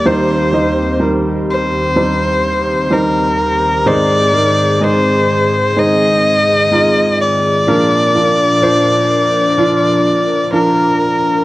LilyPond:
<<
  \new Staff \with { instrumentName = "Violin" } { \time 4/4 \key aes \lydian \tempo 4 = 63 c''4 r8 c''4. bes'4 | d''4 c''4 ees''4. d''8~ | d''2. bes'4 | }
  \new Staff \with { instrumentName = "Grand piano" } { \time 4/4 \key aes \lydian <g ees' c''>8 <g ees' ees''>8 <g ees' bes'>4 <g ees' c''>4 <g ees' c''>4 | <aes ees' c''>8 <aes ees' bes'>8 <aes ees' ees''>4 <aes ees' c''>4 <aes ees' f'>4 | <f d' bes'>8 <f d' bes'>8 <f d' c''>4 <f d' f'>4 <f d' bes'>4 | }
  \new Staff \with { instrumentName = "Grand piano" } { \clef bass \time 4/4 \key aes \lydian <ees, ees>1 | <aes, ees>1 | bes,1 | }
  \new Staff \with { instrumentName = "Analog synth pad" } { \clef bass \time 4/4 \key aes \lydian << { <ees, g'>1 | <aes, aes'>1 | <bes, bes'>1 | } \\ { <ees c'>1~ | <ees c'>1 | <f d'>1 | } >> }
>>